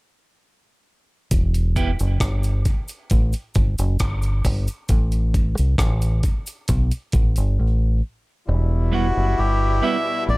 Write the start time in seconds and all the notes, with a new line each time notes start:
1.31 E1, kick, closed hi-hat, cabasa
1.54 closed hi-hat, cabasa
1.76 B3 E4 G4, kick, closed hi-hat, cabasa
1.99 F#1, closed hi-hat, cabasa
2.20 G1, kick, cross-stick, closed hi-hat, cabasa
2.43 closed hi-hat, cabasa
2.65 kick, closed hi-hat, cabasa
2.88 closed hi-hat, cabasa
3.10 A1, kick, closed hi-hat, cabasa
3.33 closed hi-hat, cabasa
3.54 G1, kick, closed hi-hat, cabasa
3.78 F#1, closed hi-hat, cabasa
3.99 G1, kick, cross-stick, closed hi-hat, cabasa
4.22 closed hi-hat, cabasa
4.44 G1, kick, open hi-hat, cabasa
4.67 closed hi-hat, cabasa
4.88 A1, kick, closed hi-hat, cabasa
5.12 closed hi-hat, cabasa
5.34 kick, closed hi-hat, cabasa
5.58 C2, closed hi-hat, cabasa
5.78 A1, kick, cross-stick, closed hi-hat, cabasa
6.02 closed hi-hat, cabasa
6.23 kick, closed hi-hat, cabasa
6.46 closed hi-hat, cabasa
6.68 B1, kick, closed hi-hat, cabasa
6.91 closed hi-hat, cabasa
7.12 A1, kick, closed hi-hat, cabasa
7.36 G1, closed hi-hat, cabasa
7.60 A1
8.47 E1 B2 G3 E4
8.92 G3 B3 E4 F#4
9.17 F#1
9.39 G1 G4
9.82 G3 B3 E4 E5
10.28 A1 D5